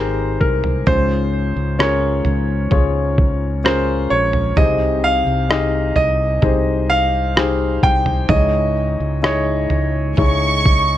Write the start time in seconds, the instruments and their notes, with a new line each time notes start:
Already playing: fingered electric bass G#1, upright piano D#4 G4 G#4 A#4 B4 C5, grand piano C5
0.40 fingered electric bass C2, grand piano A#4, kick
0.64 floor tom
0.87 fingered electric bass C#2, upright piano G#2 C#4 F4 G#4 C5, grand piano C5, kick, floor tom
1.56 fingered electric bass C#2
1.79 upright piano C#4 F4 G#4 A#4, grand piano C#5, cross-stick
2.25 fingered electric bass C#2, floor tom
2.71 fingered electric bass C#2, upright piano C#4 F4 G#4 C#5, kick, floor tom
3.18 kick
3.64 upright piano C#4 F4 G#4 A#4, grand piano C5, cross-stick
4.10 fingered electric bass A#1, grand piano C#5
4.33 floor tom
4.57 fingered electric bass C2, upright piano C3 D#4 G4 G#4 C5, grand piano D#5, kick, floor tom
5.04 grand piano F5
5.27 fingered electric bass C2
5.49 upright piano D#4 G4 G#4 D#5, cross-stick
5.96 fingered electric bass C2, grand piano D#5, floor tom
6.42 fingered electric bass C2, upright piano D#4 G4 G#4 C5, kick, floor tom
6.90 grand piano F5
7.36 upright piano D#4 G4 G#4 C5, cross-stick
7.83 fingered electric bass C2, grand piano G5, kick
8.06 floor tom
8.29 fingered electric bass C#2, upright piano G#2 D#4 E4 G#4 C#5, grand piano D#5, kick, floor tom
9.00 fingered electric bass C#2
9.23 upright piano D#4 E4 G#4 D#5, grand piano C#5, cross-stick
9.70 fingered electric bass C#2, floor tom
10.17 fingered electric bass C#2, upright piano D#4 E4 G#4 C#5, violin section C#6, kick, floor tom
10.66 kick